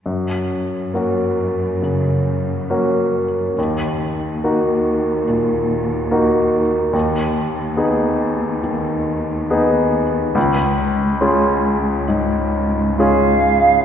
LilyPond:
<<
  \new Staff \with { instrumentName = "Flute" } { \time 4/4 \key fis \major \tempo 4 = 70 r1 | r1 | r1 | r2. eis''4 | }
  \new Staff \with { instrumentName = "Grand piano" } { \time 4/4 \key fis \major fis,4 <ais cis' fis'>4 cis4 <ais cis' fis'>4 | dis,4 <ais dis' fis'>4 ais,4 <ais dis' fis'>4 | dis,4 <b dis' gis'>4 dis4 <b dis' gis'>4 | cis,4 <cis' eis' gis'>4 gis,4 <cis' eis' gis'>4 | }
  \new Staff \with { instrumentName = "Cello section" } { \clef bass \time 4/4 \key fis \major fis,1 | dis,1 | dis,1 | cis,1 | }
>>